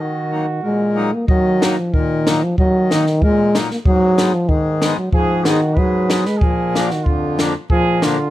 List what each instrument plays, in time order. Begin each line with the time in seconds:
0.00 accordion D#3, euphonium D#3, trumpet F#4
0.32 accordion F#3 A#3 D#4
0.62 accordion A#2, euphonium G#3
0.96 accordion F#3 A#3 D#4
1.13 euphonium A#3
1.28 accordion D#3, euphonium F#3, kick
1.61 accordion F#3 A#3 D#4, snare, hi-hat pedal
1.79 euphonium F3
1.94 accordion A#2, euphonium D#3, kick
2.27 accordion F#3 A#3 D#4, snare, hi-hat pedal
2.44 euphonium F3
2.58 accordion D#3, euphonium F#3, kick
2.90 euphonium D#3, accordion F#3 A#3 D#4, snare, hi-hat pedal
3.07 snare
3.22 accordion A#2, euphonium G#3, kick
3.54 accordion F#3 A#3 D#4, snare, hi-hat pedal
3.71 euphonium A#3, snare
3.85 accordion G#2, euphonium F#3, kick
4.18 accordion G#3 B3 D#4, snare, hi-hat pedal
4.34 euphonium F3
4.49 accordion G#2, euphonium D#3, kick
4.82 accordion G#3 B3 D#4, snare, hi-hat pedal
4.97 euphonium F#3
5.12 accordion G#2, euphonium F3, trumpet G#4, kick
5.44 euphonium D#3, accordion G#3 B3 D#4, trumpet F#4, snare, hi-hat pedal
5.74 accordion G#2, euphonium F#3, trumpet B4, kick
6.09 accordion G#3 B3 D#4, snare, hi-hat pedal
6.22 euphonium G#3, trumpet B4, snare
6.38 trumpet G#4, kick
6.42 accordion A#2, euphonium F3
6.75 accordion F3 A#3 D4, snare, hi-hat pedal
6.88 trumpet F#4, snare
6.92 euphonium D#3
7.04 accordion F2, euphonium D3, trumpet F4, kick
7.39 accordion F3 A#3 D4, snare, hi-hat pedal
7.70 accordion A#2, euphonium F3, trumpet G#4, kick
8.02 euphonium D3, accordion F3 A#3 D4, trumpet F4, snare, hi-hat pedal